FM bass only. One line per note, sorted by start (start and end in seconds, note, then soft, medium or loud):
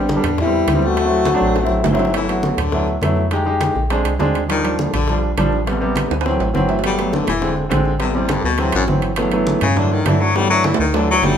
0.00 0.18 A1 medium
0.24 0.65 E2 loud
0.67 1.35 D2 medium
1.41 1.68 A1 medium
1.70 1.84 A1 medium
1.85 2.53 G1 medium
2.57 2.99 D2 medium
3.02 3.70 F2 medium
3.76 4.03 A#1 medium
4.05 4.19 C2 medium
4.20 4.88 D#2 medium
4.94 5.34 A#1 loud
5.38 6.06 A1 medium
6.11 6.38 D2 medium
6.40 6.54 A1 medium
6.55 7.23 G1 medium
7.27 7.68 E1 medium
7.71 8.39 A1 medium
8.44 8.72 D2 loud
8.74 8.88 A1 medium
8.88 9.56 G1 medium
9.62 10.03 G2 loud
10.06 10.74 G2 medium
10.79 11.20 D2 loud
11.23 11.38 G1 medium